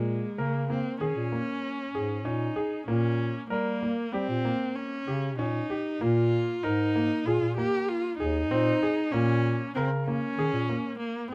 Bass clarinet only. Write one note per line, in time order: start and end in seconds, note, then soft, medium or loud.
0.00 0.23 A#2 medium
0.38 0.86 C#3 medium
1.00 1.12 D#3 medium
1.16 1.40 A#2 medium
1.94 2.27 G#2 medium
2.25 2.49 A#2 medium
2.88 3.36 A#2 loud
3.51 3.98 G3 medium
4.13 4.25 G3 medium
4.29 4.53 A#2 medium
5.07 5.40 C#3 medium
5.38 5.62 A#2 medium
6.01 6.49 A#2 loud
6.64 7.11 G#2 medium
7.26 7.38 A#2 medium
7.41 7.65 A#2 medium
8.19 8.53 D#2 medium
8.51 8.75 A#2 medium
9.13 9.61 A#2 loud
9.75 10.23 C#3 medium
10.38 10.50 D#3 medium
10.53 10.77 A#2 medium